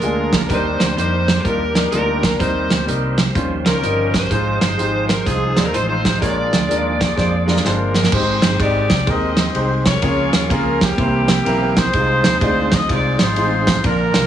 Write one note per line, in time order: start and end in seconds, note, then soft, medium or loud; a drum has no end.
0.00 0.42 D2 medium
0.00 0.48 D3 medium
0.00 0.45 F3 medium
0.00 0.47 G#3 medium
0.00 0.48 G#3 medium
0.00 0.32 G#3 medium
0.00 2.36 A#3 medium
0.00 3.32 A#3 medium
0.00 0.46 D4 medium
0.00 2.36 D4 medium
0.00 0.33 D4 medium
0.00 0.46 F4 medium
0.00 0.33 F4 medium
0.00 0.45 G#4 medium
0.00 0.33 G#4 medium
0.00 0.50 A#4 medium
0.00 0.51 A#4 medium
0.00 closed hi-hat medium
0.33 kick medium
0.33 snare loud
0.33 closed hi-hat medium
0.49 0.76 D#2 medium
0.49 1.24 D#3 medium
0.49 0.80 G3 medium
0.49 4.28 G3 medium
0.49 3.34 G3 medium
0.49 0.80 D4 medium
0.49 2.39 D4 medium
0.49 0.81 D#4 medium
0.49 0.97 G4 medium
0.49 4.28 G4 medium
0.49 0.81 A#4 loud
0.49 0.96 C5 medium
0.49 0.98 C5 medium
0.49 kick loud
0.49 closed hi-hat medium
0.80 0.95 D2 medium
0.80 snare medium
0.80 closed hi-hat medium
0.96 1.38 F2 medium
0.96 1.27 G3 medium
0.96 1.28 D4 medium
0.96 1.28 D#4 medium
0.96 1.46 G4 medium
0.96 1.28 A#4 medium
0.96 1.41 C5 medium
0.96 1.42 C5 medium
0.96 closed hi-hat medium
1.28 snare loud
1.28 closed hi-hat medium
1.40 1.60 G3 medium
1.40 1.44 A4 medium
1.44 1.85 D#2 medium
1.44 1.60 D4 medium
1.44 1.92 D4 medium
1.44 1.60 D#4 medium
1.44 1.61 F4 medium
1.44 1.92 G4 medium
1.44 1.89 A#4 medium
1.44 1.93 A#4 medium
1.44 kick loud
1.44 closed hi-hat medium
1.74 1.83 G3 medium
1.74 1.84 D4 medium
1.74 1.84 D#4 medium
1.74 1.84 A#4 medium
1.74 snare loud
1.74 closed hi-hat medium
1.92 2.33 D2 medium
1.92 2.23 G3 medium
1.92 2.23 D4 medium
1.92 2.37 D4 medium
1.92 2.23 D#4 medium
1.92 2.24 F4 medium
1.92 2.37 G4 medium
1.92 2.36 A#4 medium
1.92 2.38 A#4 medium
1.92 closed hi-hat medium
2.23 kick medium
2.23 snare loud
2.23 closed hi-hat medium
2.39 2.66 D#2 medium
2.39 3.14 D#3 medium
2.39 2.70 G3 medium
2.39 3.34 A#3 medium
2.39 2.71 C4 medium
2.39 2.71 D#4 medium
2.39 3.32 G4 medium
2.39 2.71 A#4 loud
2.39 2.84 C5 medium
2.39 6.18 C5 medium
2.39 2.88 C5 medium
2.39 kick loud
2.39 closed hi-hat medium
2.70 2.86 D2 medium
2.70 snare loud
2.70 closed hi-hat medium
2.86 3.29 C2 medium
2.86 3.18 G3 medium
2.86 3.18 C4 medium
2.86 3.18 D#4 medium
2.86 3.19 A#4 medium
2.86 closed hi-hat medium
3.18 snare loud
3.18 closed hi-hat medium
3.35 3.61 D#2 medium
3.35 4.10 D#3 medium
3.35 8.09 F3 medium
3.35 3.51 G3 medium
3.35 3.51 C#4 medium
3.35 4.30 C#4 medium
3.35 4.31 C#4 medium
3.35 3.51 F4 medium
3.35 3.51 C5 medium
3.35 kick loud
3.35 closed hi-hat medium
3.65 3.81 C#2 medium
3.65 3.74 G3 medium
3.65 3.74 C#4 medium
3.65 4.28 C#4 medium
3.65 3.75 F4 medium
3.65 4.28 G4 medium
3.65 4.15 A#4 medium
3.65 4.28 A#4 medium
3.65 3.75 C5 medium
3.65 snare loud
3.65 closed hi-hat medium
3.82 4.24 G1 medium
3.82 4.13 G3 medium
3.82 4.14 C#4 medium
3.82 4.14 F4 medium
3.82 4.14 D#5 medium
3.82 closed hi-hat medium
4.14 4.61 C5 medium
4.14 kick medium
4.14 snare loud
4.14 closed hi-hat medium
4.30 4.57 G#1 loud
4.30 5.05 G#2 medium
4.30 4.61 G#3 medium
4.30 8.09 G#3 medium
4.30 4.62 D#4 medium
4.30 6.20 D#4 medium
4.30 4.60 D#4 medium
4.30 6.21 D#4 medium
4.30 4.62 F4 medium
4.30 4.60 F4 medium
4.30 8.10 G#4 medium
4.30 4.62 C5 medium
4.30 4.61 C5 medium
4.30 kick loud
4.30 closed hi-hat medium
4.61 4.76 G1 medium
4.61 5.53 D#4 medium
4.61 5.26 F4 medium
4.61 5.09 C5 medium
4.61 5.23 C5 medium
4.61 snare loud
4.61 closed hi-hat medium
4.77 5.20 G#1 medium
4.77 5.09 G#3 medium
4.77 5.09 D#4 medium
4.77 5.09 F4 medium
4.77 5.10 G4 medium
4.77 closed hi-hat medium
5.09 5.25 A#4 medium
5.09 snare loud
5.09 closed hi-hat medium
5.26 5.53 C2 medium
5.26 5.41 G#3 medium
5.26 6.18 C4 medium
5.26 5.42 D#4 medium
5.26 5.42 F4 medium
5.26 5.89 F4 medium
5.26 5.66 G#4 medium
5.26 5.42 C5 medium
5.26 kick loud
5.26 closed hi-hat medium
5.55 5.72 D#2 medium
5.55 5.65 G#3 medium
5.55 5.65 D#4 medium
5.55 5.66 F4 medium
5.55 5.66 D5 medium
5.55 snare loud
5.55 closed hi-hat medium
5.66 5.75 A#4 medium
5.73 6.15 A1 medium
5.73 6.04 G#3 medium
5.73 6.04 D#4 medium
5.73 6.05 F4 medium
5.73 5.88 C5 medium
5.73 6.05 C5 medium
5.73 5.90 C5 medium
5.73 closed hi-hat medium
5.89 6.20 D#4 medium
5.89 6.20 F4 medium
5.89 6.21 C5 medium
5.89 6.20 C5 medium
6.05 kick medium
6.05 snare loud
6.05 closed hi-hat medium
6.21 6.48 A#1 medium
6.21 6.96 A#2 medium
6.21 6.52 G#3 medium
6.21 8.10 A#3 medium
6.21 8.11 A#3 medium
6.21 6.52 D4 medium
6.21 8.11 D4 medium
6.21 6.53 F4 medium
6.21 7.61 F4 medium
6.21 7.61 G#4 medium
6.21 6.53 A#4 medium
6.21 7.61 D5 medium
6.21 7.62 D5 loud
6.21 kick loud
6.21 closed hi-hat medium
6.53 6.68 D2 medium
6.53 snare medium
6.53 closed hi-hat medium
6.68 7.11 D#2 medium
6.68 7.00 G#3 medium
6.68 7.00 D4 medium
6.68 7.00 F4 medium
6.68 7.01 A#4 medium
6.68 closed hi-hat medium
7.01 kick medium
7.01 snare loud
7.01 closed hi-hat medium
7.16 7.58 F2 medium
7.16 7.32 G#3 medium
7.16 7.32 D4 medium
7.16 7.33 F4 medium
7.16 7.33 C5 medium
7.16 kick loud
7.16 snare medium
7.46 7.56 G#3 medium
7.46 7.56 D4 medium
7.46 7.56 F4 medium
7.46 7.57 A#4 medium
7.46 snare medium
7.56 snare medium
7.64 8.06 G1 medium
7.64 7.95 G#3 medium
7.64 7.96 D4 medium
7.64 8.10 D4 medium
7.64 7.96 F4 medium
7.64 8.10 F4 medium
7.64 8.10 A#4 medium
7.64 7.96 C5 medium
7.64 snare medium
7.94 snare medium
8.03 snare medium
8.12 8.38 G#1 medium
8.12 8.87 G#2 medium
8.12 10.01 D#3 medium
8.12 8.43 G#3 medium
8.12 10.01 G#3 medium
8.12 10.01 C4 medium
8.12 8.43 C4 medium
8.12 8.44 D#4 medium
8.12 9.04 D#4 medium
8.12 10.01 G4 medium
8.12 8.60 G4 medium
8.12 8.44 G4 medium
8.12 8.61 C5 loud
8.12 8.44 C5 medium
8.12 kick loud
8.12 crash loud
8.42 8.58 G1 medium
8.42 snare loud
8.42 ride medium
8.59 8.86 G#1 medium
8.59 8.91 G#3 medium
8.59 8.91 C4 medium
8.59 8.91 D#4 medium
8.59 8.91 G4 medium
8.59 9.07 G4 medium
8.59 9.08 D5 loud
8.59 8.92 D5 medium
8.59 kick loud
8.59 ride medium
8.90 9.05 C2 loud
8.90 kick medium
8.90 snare loud
8.90 ride medium
9.07 9.48 D#2 medium
9.07 9.38 G#3 medium
9.07 9.38 C4 medium
9.07 9.39 D#4 medium
9.07 9.99 G4 medium
9.07 9.39 G4 medium
9.07 9.39 A#4 medium
9.07 9.99 C5 medium
9.07 9.56 D#5 loud
9.07 kick loud
9.07 ride medium
9.37 snare loud
9.37 ride medium
9.55 9.96 C2 medium
9.55 9.86 G#3 medium
9.55 9.86 C4 medium
9.55 9.86 D#4 medium
9.55 9.86 G4 medium
9.55 9.87 C5 medium
9.55 ride medium
9.86 10.78 F4 medium
9.86 10.50 A#4 medium
9.86 10.47 C#5 loud
9.86 kick medium
9.86 snare loud
9.86 ride medium
10.02 10.29 C#2 loud
10.02 10.77 C#3 medium
10.02 10.98 F3 medium
10.02 10.33 A#3 medium
10.02 11.92 A#3 medium
10.02 10.34 C#4 medium
10.02 10.97 C#4 medium
10.02 10.34 F4 medium
10.02 10.98 G#4 medium
10.02 10.34 G#4 medium
10.02 10.34 C#5 medium
10.02 kick loud
10.02 ride medium
10.33 10.48 D#2 medium
10.33 snare loud
10.33 ride medium
10.50 10.91 C#2 medium
10.50 10.81 A#3 medium
10.50 10.81 C#4 medium
10.50 10.82 F4 medium
10.50 10.82 G#4 medium
10.50 10.81 A#4 medium
10.50 10.82 A#4 medium
10.50 kick loud
10.50 ride medium
10.81 11.73 A#3 medium
10.81 11.73 E4 medium
10.81 11.77 G4 loud
10.81 kick loud
10.81 snare loud
10.81 ride medium
10.97 11.39 C2 loud
10.97 11.72 C3 medium
10.97 11.93 E3 medium
10.97 11.28 A#3 medium
10.97 11.29 C4 medium
10.97 13.81 C4 medium
10.97 11.29 E4 medium
10.97 11.29 G4 medium
10.97 11.93 G4 medium
10.97 11.29 C5 medium
10.97 kick loud
10.97 ride medium
11.28 snare loud
11.28 ride medium
11.45 11.86 B1 loud
11.45 11.76 A#3 medium
11.45 11.77 C4 medium
11.45 11.77 E4 medium
11.45 11.77 G4 medium
11.45 11.77 A#4 medium
11.45 ride medium
11.77 12.68 D#4 medium
11.77 12.68 G#4 medium
11.77 12.72 C5 loud
11.77 kick medium
11.77 snare loud
11.77 ride medium
11.93 12.20 C2 loud
11.93 12.68 C3 medium
11.93 12.25 G#3 medium
11.93 13.82 G#3 medium
11.93 12.25 C4 medium
11.93 13.82 D#4 medium
11.93 12.25 D#4 medium
11.93 13.82 F4 medium
11.93 12.25 F4 medium
11.93 12.25 C5 medium
11.93 kick loud
11.93 ride medium
12.24 12.39 D#2 medium
12.24 snare loud
12.24 ride medium
12.41 12.82 D2 loud
12.41 12.72 G#3 medium
12.41 12.72 C4 medium
12.41 12.72 D#4 medium
12.41 12.72 F4 medium
12.41 12.73 D5 loud
12.41 kick loud
12.41 ride medium
12.72 12.90 D#5 loud
12.72 kick loud
12.72 snare loud
12.72 ride soft
12.88 13.15 C2 medium
12.88 13.19 G#3 medium
12.88 13.20 C4 medium
12.88 13.20 D#4 medium
12.88 13.20 F4 medium
12.88 13.81 F4 medium
12.88 13.19 G#4 medium
12.88 13.20 C5 medium
12.88 13.18 D5 loud
12.88 kick loud
12.88 ride medium
13.19 13.34 G#1 loud
13.19 13.80 D#4 medium
13.19 13.81 G#4 medium
13.19 13.85 C5 loud
13.19 snare loud
13.19 ride medium
13.36 13.77 A1 loud
13.36 13.67 G#3 medium
13.36 13.67 C4 medium
13.36 13.68 D#4 medium
13.36 13.68 F4 medium
13.36 13.68 C5 medium
13.36 ride medium
13.67 kick medium
13.67 snare loud
13.67 ride medium
13.84 14.10 A#1 loud
13.84 14.27 A#2 medium
13.84 14.27 D3 medium
13.84 14.27 F3 medium
13.84 14.27 A#3 medium
13.84 14.15 D4 medium
13.84 14.27 D4 medium
13.84 14.15 F4 medium
13.84 14.27 F4 medium
13.84 14.27 A#4 loud
13.84 14.15 A#4 medium
13.84 kick loud
13.84 ride medium
14.14 14.27 C2 medium
14.14 snare loud
14.14 ride medium